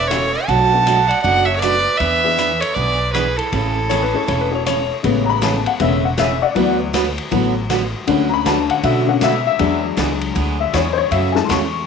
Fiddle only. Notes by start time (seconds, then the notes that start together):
0.08 C#5
0.46 A5
1.09 F#5
1.22 F#5
1.46 E5
1.56 C#5 D5
1.98 E5
2.61 C#5
2.75 D5
3.13 B4
3.37 A4